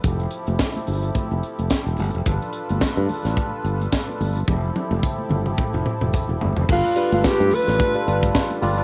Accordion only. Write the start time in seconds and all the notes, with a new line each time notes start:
Already playing: A4
0.05 F3 C4 E4 G4
2.27 G3 D4 F4 B4
4.48 F3 C4 E4 G4
6.69 G3 D4 F4 A4 B4